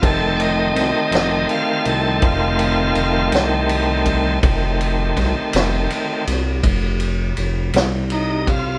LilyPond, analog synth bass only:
\new Staff \with { instrumentName = "Analog synth bass" } { \clef bass \time 12/8 \key f \phrygian \tempo 4. = 54 f,,4 c,16 r16 f,,8 r8 c,8 f,,4 f,,8 c,4. | f,,4 c,16 r16 f,,8 r8 c,8 f,,4 f,,8 c,4. | }